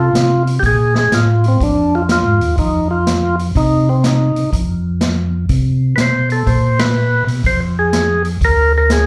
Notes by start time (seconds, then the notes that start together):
Already playing: C3 F4
0.13 C3, snare, closed hi-hat
0.47 open hi-hat
0.59 A#2 G4, kick, open hi-hat
0.66 G#4
0.95 G#4, snare
1.11 A2 F4, snare, closed hi-hat
1.44 open hi-hat
1.48 C4
1.60 F2 D4, kick, open hi-hat
1.95 F4
2.09 F4, snare, closed hi-hat
2.25 G#2
2.41 D#2, open hi-hat
2.58 F2 D#4, kick, open hi-hat
2.91 F4
3.07 snare, closed hi-hat
3.39 open hi-hat
3.55 C3 D#4, kick, open hi-hat
3.89 C4
4.04 D#4, snare, closed hi-hat
4.36 C3, open hi-hat
4.52 F2, kick, open hi-hat
5.01 snare, closed hi-hat
5.49 C3, kick, open hi-hat
5.96 B2 B4, snare, closed hi-hat
6.01 C5
6.30 A4, open hi-hat
6.46 A#2 C5, kick, open hi-hat
6.79 B4, snare, ride
7.27 B2, open hi-hat
7.44 F2 C5, kick, open hi-hat
7.79 G#4
7.93 snare, closed hi-hat
8.25 open hi-hat
8.41 D2 A#4, kick, open hi-hat
8.78 A#4
8.90 G#4, snare, closed hi-hat